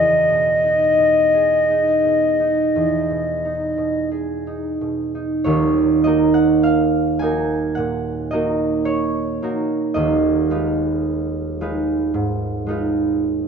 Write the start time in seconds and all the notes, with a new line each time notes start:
Already playing: E2 D#4 G#4 D#5
0.29 B2
0.64 D#4
0.98 B2
1.34 G#4
1.70 D#4
2.05 B2
2.40 D#4
2.76 E2
3.10 B2
3.45 D#4
3.77 B2
4.11 G#4
4.47 D#4
4.81 B2
5.15 D#4
5.44 D#1 D#2 C#5
6.04 A#3 D#4 F#4 A#4 D#5
6.34 F#5
6.63 F5
7.19 A#3 D#4 F#4 A#4 G#5
7.75 A#2 F#5
8.31 A#3 D#4 F#4 A#4 D#5
8.85 C#5
9.42 A#3 D#4 F#4 A#4
9.94 D#1 D#2 D#5
10.50 G#3 D#4 F4 B4
11.61 G#3 D#4 F4 B4
12.14 G#2
12.67 G#3 D#4 F4 B4